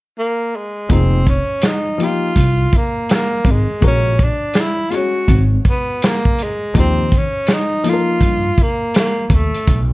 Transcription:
0.19 tenor saxophone A#3
0.56 tenor saxophone G#3
0.89 upright bass F1, grand piano F3 A#3 D#4 G#4, tenor saxophone C4, kick, closed hi-hat
1.27 tenor saxophone C#4, kick, closed hi-hat
1.62 snare, closed hi-hat
1.66 tenor saxophone D#4
1.98 grand piano F3 A#3 D#4 G4, closed hi-hat
2.04 tenor saxophone F4
2.36 upright bass C2, kick, closed hi-hat
2.73 tenor saxophone A#3, kick, closed hi-hat
3.09 snare, closed hi-hat
3.14 tenor saxophone A#3
3.45 upright bass G#1, kick, closed hi-hat
3.51 tenor saxophone G#3
3.81 upright bass A#1, grand piano G#3 C#4 F#4 A#4, kick, closed hi-hat
3.87 tenor saxophone C#4
4.19 kick, closed hi-hat
4.24 tenor saxophone D4
4.54 snare, closed hi-hat
4.60 tenor saxophone E4
4.90 grand piano G#3 C#4 F#4 C#5, tenor saxophone F4, closed hi-hat
4.96 tenor saxophone F#4
5.28 upright bass G#1, kick, closed hi-hat
5.65 kick, closed hi-hat
5.69 tenor saxophone B3
6.02 tenor saxophone A#3, snare, closed hi-hat
6.25 kick
6.39 closed hi-hat
6.43 tenor saxophone G#3
6.74 upright bass D#2, grand piano F3 A#3 D#4 G4, kick, closed hi-hat
6.79 tenor saxophone C4
7.12 kick, closed hi-hat
7.18 tenor saxophone C#4
7.47 snare, closed hi-hat
7.53 tenor saxophone D#4
7.84 grand piano F3 A#3 D#4 A4, closed hi-hat
7.89 tenor saxophone F4, grand piano A#4
8.21 upright bass G2, kick, closed hi-hat
8.58 kick, closed hi-hat
8.62 tenor saxophone A#3
8.94 snare, closed hi-hat
8.99 tenor saxophone A#3
9.28 upright bass D#2, tenor saxophone A#3, kick, closed hi-hat
9.35 tenor saxophone A3
9.54 closed hi-hat
9.67 upright bass B1, kick, closed hi-hat

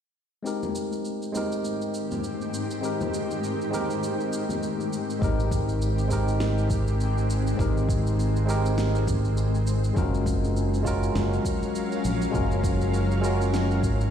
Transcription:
0.43 ambient pad D#3, tine electric piano G#3 C4 D#4 G4, shaker
0.47 ambient pad G#2 C4 G4, tine electric piano A#4
0.63 high conga, shaker
0.75 shaker
0.92 shaker
1.05 shaker
1.22 shaker
1.32 tine electric piano G#3 C4 D#4 G4, high conga, shaker
1.37 tine electric piano A#4
1.52 shaker
1.65 shaker
1.82 shaker
1.94 shaker
2.11 high conga, shaker
2.24 shaker
2.41 shaker
2.54 shaker
2.71 shaker
2.81 tine electric piano G#3 C4 D#4 G4, shaker
2.85 tine electric piano A#4
3.01 high conga, shaker
3.14 shaker
3.31 shaker
3.44 shaker
3.61 shaker
3.70 tine electric piano G#3 C4 D#4 G4, high conga, shaker
3.75 tine electric piano A#4
3.90 shaker
4.03 shaker
4.20 shaker
4.33 shaker
4.49 high conga, shaker
4.63 shaker
4.80 shaker
4.93 shaker
5.10 shaker
5.19 fingered electric bass G#1, tine electric piano G#3 C4 D#4 G4, ambient pad G#3 C4 G4, kick, shaker
5.24 tine electric piano A#4
5.40 shaker
5.51 kick, shaker
5.69 shaker
5.82 shaker
5.98 shaker
6.08 tine electric piano G#3 C4 D#4 G4, kick, shaker
6.13 tine electric piano A#4
6.28 shaker
6.40 snare, shaker
6.58 shaker
6.70 kick, shaker
6.88 shaker
7.00 shaker
7.18 shaker
7.30 shaker
7.47 shaker
7.56 fingered electric bass G#1, tine electric piano G#3 C4 D#4 G4, kick, shaker
7.61 tine electric piano A#4
7.77 shaker
7.89 kick, shaker
8.07 shaker
8.20 shaker
8.36 shaker
8.46 tine electric piano G#3 C4 D#4 G4, shaker
8.50 tine electric piano A#4
8.66 shaker
8.78 snare, shaker
8.95 shaker
9.07 kick, shaker
9.25 shaker
9.37 shaker
9.55 shaker
9.67 shaker
9.84 shaker
9.94 fingered electric bass F#1, ambient pad F#3 C#4 A#4 F5, tine electric piano G#3 C#4 F4 F#4, kick, shaker
9.98 tine electric piano A#4
10.14 shaker
10.26 kick, shaker
10.44 shaker
10.57 shaker
10.74 shaker
10.83 tine electric piano G#3 C#4 F4 F#4, kick, shaker
10.87 tine electric piano A#4
11.03 shaker
11.15 fingered electric bass F#1, snare, shaker
11.33 shaker
11.45 kick, shaker
11.63 shaker
11.75 shaker
11.92 shaker
12.05 fingered electric bass A#1, shaker
12.22 shaker
12.31 fingered electric bass F#1, tine electric piano G#3 C#4 F4 F#4, kick, shaker
12.35 tine electric piano A#4
12.51 shaker
12.64 kick, shaker
12.81 shaker
12.94 shaker
13.11 shaker
13.21 tine electric piano G#3 C#4 F4 F#4, shaker
13.25 tine electric piano A#4
13.41 shaker
13.54 snare, shaker
13.71 shaker
13.83 fingered electric bass G#1, kick, shaker
14.01 shaker

